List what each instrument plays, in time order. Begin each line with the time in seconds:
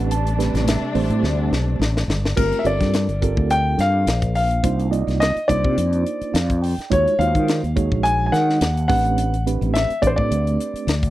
Already playing: fretless electric bass A1, string section C3 G3 A3 D4, reed electric piano A3 C4 D4 G4 B4
0.11 reed electric piano A5, closed hi-hat
0.27 closed hi-hat
0.38 reed electric piano A3 C4 D4 G4 B4, snare, closed hi-hat
0.53 fretless electric bass A1, snare, closed hi-hat
0.68 reed electric piano E5, snare, closed hi-hat
0.81 muted fretless electric bass stroke
0.94 fretless electric bass A1, reed electric piano A3 C4 D4 G4 C5, open hi-hat
1.10 fretless electric bass A2, closed hi-hat
1.23 fretless electric bass D2, snare
1.51 fretless electric bass B1, snare
1.79 fretless electric bass A1, snare
1.97 snare
2.08 fretless electric bass G1, snare
2.25 snare
2.36 fretless electric bass G1, reed electric piano A3 C4 F4 G4 A#4, grand piano A#4, kick, crash
2.52 closed hi-hat
2.59 grand piano E5
2.64 fretless electric bass G1, reed electric piano C4 F4 G4 A4 A#4, grand piano D5, closed hi-hat
2.80 fretless electric bass G2, kick, snare, closed hi-hat
2.94 snare, closed hi-hat
3.08 fretless electric bass G1, closed hi-hat
3.22 reed electric piano C4 F4 G4 A4 A#4, kick, closed hi-hat
3.37 fretless electric bass D2, kick
3.50 grand piano G5, closed hi-hat
3.78 fretless electric bass G2, grand piano F5, snare, closed hi-hat
4.06 fretless electric bass A#1, snare, closed hi-hat
4.22 kick, closed hi-hat
4.35 grand piano F5, open hi-hat
4.51 closed hi-hat
4.63 fretless electric bass C2, reed electric piano A#3 D4 D#4 F4 C5, kick, closed hi-hat
4.79 closed hi-hat
4.91 reed electric piano A#3 D#4 F4 D5 D#5, closed hi-hat
5.07 fretless electric bass C2, snare, closed hi-hat
5.20 grand piano D#5, snare, closed hi-hat
5.36 muted fretless electric bass stroke, closed hi-hat
5.48 fretless electric bass C2, reed electric piano A#3 D4 D#4 F4 C5, grand piano D5, kick, closed hi-hat
5.64 fretless electric bass C3, kick
5.77 fretless electric bass F2, closed hi-hat
5.93 closed hi-hat
6.06 closed hi-hat
6.21 muted fretless electric bass stroke, closed hi-hat
6.34 fretless electric bass F2, reed electric piano F5, snare, closed hi-hat
6.50 kick, closed hi-hat
6.62 reed electric piano G5, open hi-hat
6.78 muted fretless electric bass stroke, snare, closed hi-hat
6.90 fretless electric bass D#2, reed electric piano G#3 D#4 F4 F#4 C#5, grand piano C#5, kick, closed hi-hat
7.08 closed hi-hat
7.19 fretless electric bass D#2, reed electric piano G#3 D#4 F4 F#4 C5, grand piano F5, closed hi-hat
7.35 fretless electric bass D#3, kick, closed hi-hat
7.48 snare, closed hi-hat
7.63 fretless electric bass D#2, closed hi-hat
7.76 reed electric piano G#3 D#4 F#4 G#4 C#5, kick, closed hi-hat
7.91 fretless electric bass A#1, kick
8.03 grand piano G#5, closed hi-hat
8.26 grand piano G#5
8.32 fretless electric bass D#3, grand piano F#5, snare, closed hi-hat
8.50 snare
8.61 fretless electric bass D#2, snare, closed hi-hat
8.77 closed hi-hat
8.88 fretless electric bass A1, reed electric piano A3 C4 D4 G4 B4, grand piano F#5, kick, open hi-hat
9.05 closed hi-hat
9.18 closed hi-hat
9.34 closed hi-hat
9.46 reed electric piano A3 C4 D4 G4 B4, closed hi-hat
9.61 fretless electric bass A1, closed hi-hat
9.74 grand piano E5, snare, closed hi-hat
9.90 closed hi-hat
10.02 fretless electric bass A1, reed electric piano A3 C4 D4 G4 B4, grand piano D5, kick, closed hi-hat
10.07 grand piano C5
10.16 fretless electric bass A2, grand piano D5, kick
10.31 fretless electric bass D2, closed hi-hat
10.47 closed hi-hat
10.60 closed hi-hat
10.73 muted fretless electric bass stroke, closed hi-hat
10.87 fretless electric bass D2, snare, closed hi-hat
11.03 kick, closed hi-hat